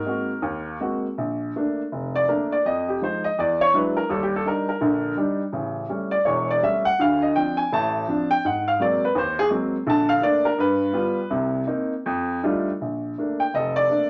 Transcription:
Already playing: D#4 A#4
0.06 G#3 A#3 C4 F#4
0.42 D#2
0.80 G#3 A#3 C4 F#4
1.18 A#1
1.56 A3 A#3 D4
1.92 F1
2.16 D5
2.28 A3 A#3 D4 A#4
2.52 D5
2.65 F2 D#5
2.89 G4
3.01 F3 G#3 D#4 C5
3.24 D#5
3.38 E2 D5
3.61 C#5
3.74 F#3 G#3 D4 E4 B4
3.97 A#4
4.10 D#2 G3 A4
4.23 G4
4.36 A4
4.45 G3 D4 D#4 A#4
4.69 A#4
4.81 A#1 D3
5.17 G3 D4 D#4
5.53 A1 C#3
5.89 G3 A3 C#4
6.11 D5
6.25 E1 E2 C#5
6.51 D5
6.62 G3 A3 C#4 E5
6.85 F#5
6.99 D2 D3 F5
7.22 D#5
7.36 F3 C4 D4 G5
7.57 G#5
7.72 A1 A2 A5
8.08 F3 C4 D4
8.31 G5
8.45 G#2 F#5
8.68 F5
8.80 F#3 G#3 A#3 C4 D5
9.05 B4
9.15 D#2 C5
9.39 G#4
9.50 F#3 G#3 A#3 C4
9.86 A#1 D3 A5
10.09 F5
10.22 A3 A#3 D4 D5
10.45 A#4
10.58 G2 B4
10.93 G3 B3 F4
11.30 C2 C3
11.67 A#3 C4 D#4
12.06 F2
12.43 G3 A3 D4 D#4 F4
12.81 A#1
13.18 A3 A#3 D4
13.40 G5
13.54 F1 A4 D#5
13.76 D5
13.90 A3 A#3 D4

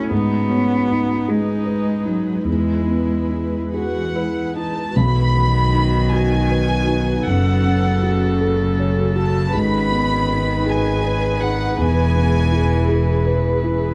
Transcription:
Already playing: A3 C#4 E4 F#4 A4
0.11 G#2 G#3 B3 D#4 B4
0.49 B3 C#4
0.88 D#4
1.28 G#3 G#4
1.66 B4
2.05 F#3 D#4
2.44 E2 E3 G#3 E4
2.87 B3
3.31 E4
3.74 F#4 G#4 F#5
4.15 E4 B4
4.56 D#4 E4 A5
4.94 B1 D#3 D#4 F#4 B4 B5
5.35 B3
5.74 D#4
6.12 F#4 G#5
6.50 B4
6.88 D#4
7.26 F#1 F#2 C#3 C#4 A4 F#5
7.64 C#4
8.03 F#4
8.41 A4
8.79 C#5
9.16 F#4 A5
9.53 G#1 G#2 D#3 D#4 G#4 B4 B5
9.91 B3
10.30 D#4
10.66 G#4 G#5
11.05 B4
11.40 D#4 F#5
11.77 E1 E2 E3 E4 G#5
12.16 B3
12.51 E4
12.89 G#4
13.26 B4
13.63 E4

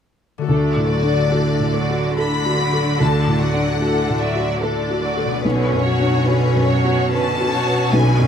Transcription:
0.38 D3 A3 F#4
0.44 A4 D5
0.48 D2 D3 A3 D4 A4
0.76 A2
0.89 F#3 A3 F#4 D5
1.03 D4
1.31 A3 D4 F#4 A4
1.59 A2
1.73 F#3 A3 F#4 D5
1.90 F#4
2.17 A3 D4 A4 B5
2.46 F#4
2.59 F#3 A3 F#4 D5
2.73 A4
2.99 D2 A3 D4 A4 A5
3.27 A2
3.39 F#3 A3 F#4 D5 F#5
3.54 D4
3.80 A3 D4 F#4 A4
4.09 A2
4.20 F#3 A3 F#4 D5 E5
4.36 F#4
4.61 A3 D4 A4 D5
4.90 F#4
5.02 F#3 A3 F#4 D5
5.17 A4
5.26 B2
5.30 B3
5.35 F#4
5.39 C#4 B4
5.44 B1 B2 D3 C#4 C#5
5.72 F#2
5.84 F#3 C#4 F#4 C#5
5.99 D4
6.26 D3 C#4 F#4 B4
6.55 F#2
6.69 F#3 C#4 F#4 C#5
6.85 F#4
7.12 D3 C#4 B4 A5
7.41 F#4
7.52 F#3 C#4 F#4 C#5
7.67 B4
7.93 B1 D3 C#4 B4 G#5
8.20 F#2

